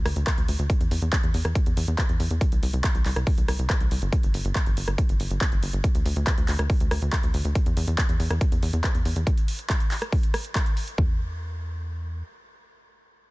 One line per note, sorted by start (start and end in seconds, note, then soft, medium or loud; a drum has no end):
0.05 0.15 D2 loud
0.05 cross-stick medium
0.05 open hi-hat loud
0.16 0.25 D2 loud
0.16 closed hi-hat medium
0.27 kick loud
0.27 cross-stick medium
0.27 clap loud
0.27 closed hi-hat loud
0.38 0.47 D2 medium
0.38 closed hi-hat medium
0.48 0.57 D2 loud
0.48 open hi-hat loud
0.59 0.68 D2 medium
0.59 closed hi-hat medium
0.70 kick loud
0.70 closed hi-hat medium
0.80 0.90 E2 medium
0.80 closed hi-hat medium
0.91 1.00 E2 loud
0.91 open hi-hat loud
1.02 1.11 E2 medium
1.02 closed hi-hat medium
1.13 kick loud
1.13 clap loud
1.13 closed hi-hat medium
1.23 1.32 E2 medium
1.23 closed hi-hat soft
1.34 1.43 E2 loud
1.34 open hi-hat loud
1.45 1.54 E2 medium
1.45 cross-stick medium
1.45 closed hi-hat medium
1.55 kick loud
1.55 closed hi-hat medium
1.66 1.75 E2 medium
1.66 closed hi-hat medium
1.77 1.86 E2 loud
1.77 open hi-hat loud
1.88 1.97 E2 medium
1.88 closed hi-hat medium
1.98 kick loud
1.98 clap loud
1.98 closed hi-hat medium
2.09 2.18 E2 medium
2.09 closed hi-hat medium
2.20 2.29 E2 loud
2.20 open hi-hat loud
2.31 2.40 E2 medium
2.31 closed hi-hat medium
2.41 kick loud
2.41 closed hi-hat medium
2.52 2.61 C2 medium
2.52 closed hi-hat medium
2.63 2.72 C2 loud
2.63 open hi-hat loud
2.73 2.82 C2 medium
2.73 closed hi-hat medium
2.84 kick loud
2.84 clap loud
2.84 closed hi-hat medium
2.95 3.04 C2 medium
2.95 closed hi-hat medium
3.05 3.15 C2 loud
3.05 clap soft
3.05 open hi-hat loud
3.16 3.25 C2 medium
3.16 cross-stick medium
3.16 closed hi-hat medium
3.27 kick loud
3.27 open hi-hat medium
3.38 3.47 C2 medium
3.38 closed hi-hat medium
3.48 3.57 C2 loud
3.48 cross-stick medium
3.48 open hi-hat loud
3.59 3.68 C2 medium
3.59 closed hi-hat medium
3.70 kick loud
3.70 cross-stick medium
3.70 clap loud
3.70 closed hi-hat medium
3.80 3.90 C2 medium
3.80 closed hi-hat medium
3.91 4.00 C2 loud
3.91 open hi-hat loud
4.02 4.11 G1 medium
4.02 closed hi-hat medium
4.13 kick loud
4.13 closed hi-hat medium
4.23 4.32 G1 medium
4.23 closed hi-hat medium
4.34 4.43 G1 loud
4.34 open hi-hat loud
4.45 4.54 G1 loud
4.45 closed hi-hat medium
4.55 kick loud
4.55 clap loud
4.55 closed hi-hat medium
4.66 4.75 G1 medium
4.66 closed hi-hat medium
4.77 4.86 G1 loud
4.77 open hi-hat loud
4.88 4.97 G1 medium
4.88 cross-stick medium
4.88 closed hi-hat medium
4.98 kick loud
4.98 closed hi-hat medium
5.09 5.18 G1 medium
5.09 closed hi-hat medium
5.20 5.29 G1 loud
5.20 open hi-hat loud
5.30 5.40 G1 medium
5.30 closed hi-hat medium
5.41 kick loud
5.41 clap loud
5.41 closed hi-hat medium
5.52 5.61 G1 medium
5.52 closed hi-hat medium
5.63 5.72 G1 loud
5.63 open hi-hat loud
5.73 5.82 G1 medium
5.73 closed hi-hat medium
5.84 kick loud
5.84 closed hi-hat medium
5.95 6.04 D2 medium
5.95 closed hi-hat medium
6.05 6.15 D2 loud
6.05 open hi-hat loud
6.16 6.25 D2 medium
6.16 closed hi-hat medium
6.27 kick loud
6.27 clap loud
6.27 closed hi-hat medium
6.38 6.47 D2 medium
6.38 closed hi-hat medium
6.48 6.57 D2 loud
6.48 clap soft
6.48 open hi-hat loud
6.59 6.68 D2 medium
6.59 cross-stick medium
6.59 closed hi-hat medium
6.70 kick loud
6.70 open hi-hat medium
6.80 6.90 D2 medium
6.80 closed hi-hat medium
6.91 7.00 D2 loud
6.91 cross-stick medium
6.91 open hi-hat loud
7.02 7.11 D2 medium
7.02 closed hi-hat medium
7.13 kick loud
7.13 cross-stick medium
7.13 clap loud
7.13 closed hi-hat medium
7.23 7.32 D2 medium
7.23 closed hi-hat medium
7.34 7.43 D2 loud
7.34 open hi-hat loud
7.45 7.54 D2 medium
7.45 closed hi-hat medium
7.55 kick loud
7.55 closed hi-hat loud
7.66 7.75 E2 medium
7.66 closed hi-hat medium
7.77 7.86 E2 loud
7.77 open hi-hat loud
7.87 7.97 E2 medium
7.87 closed hi-hat medium
7.98 kick loud
7.98 clap loud
7.98 closed hi-hat loud
8.09 8.18 E2 medium
8.09 closed hi-hat medium
8.20 8.29 E2 loud
8.20 open hi-hat loud
8.30 8.39 E2 medium
8.30 cross-stick medium
8.30 closed hi-hat medium
8.41 kick loud
8.41 closed hi-hat loud
8.52 8.61 E2 medium
8.52 closed hi-hat medium
8.62 8.72 E2 loud
8.62 open hi-hat loud
8.73 8.82 E2 loud
8.73 closed hi-hat medium
8.84 kick loud
8.84 clap loud
8.84 closed hi-hat loud
8.95 9.04 E2 medium
8.95 closed hi-hat medium
9.05 9.14 E2 loud
9.05 open hi-hat loud
9.16 9.25 E2 medium
9.16 closed hi-hat medium
9.27 kick loud
9.27 closed hi-hat loud
9.38 closed hi-hat medium
9.48 open hi-hat loud
9.59 closed hi-hat medium
9.70 kick loud
9.70 clap loud
9.70 closed hi-hat loud
9.80 closed hi-hat medium
9.91 clap soft
9.91 open hi-hat loud
10.02 cross-stick medium
10.02 closed hi-hat medium
10.12 kick loud
10.12 open hi-hat medium
10.23 closed hi-hat medium
10.34 cross-stick medium
10.34 open hi-hat loud
10.45 closed hi-hat medium
10.55 kick loud
10.55 cross-stick medium
10.55 clap loud
10.55 closed hi-hat loud
10.66 closed hi-hat medium
10.77 open hi-hat loud
10.88 closed hi-hat medium
10.98 12.23 E2 loud
10.98 kick loud